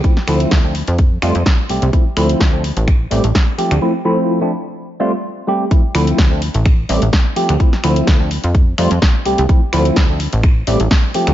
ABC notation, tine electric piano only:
X:1
M:4/4
L:1/16
Q:"Swing 16ths" 1/4=127
K:Dm
V:1 name="Tine electric piano"
[F,A,CE] z [F,A,CE]3 [F,A,CD] z4 [G,A,CF] z3 [G,A,CG] z | [F,A,CE] z [F,A,CE]3 [F,A,CD] z4 [G,A,CG] z3 [F,A,CG] z | [F,A,CE] z [F,A,CE]3 [F,A,CD] z4 [G,A,CF] z3 [G,A,CG] z | [F,A,CE] z [F,A,CE]3 [F,A,CD] z4 [G,A,CG] z3 [F,A,CG] z |
[F,A,CE] z [F,A,CE]3 [F,A,CD] z4 [G,A,CF] z3 [G,A,CG] z | [F,A,CE] z [F,A,CE]3 [F,A,CD] z4 [G,A,CG] z3 [F,A,CG] z |]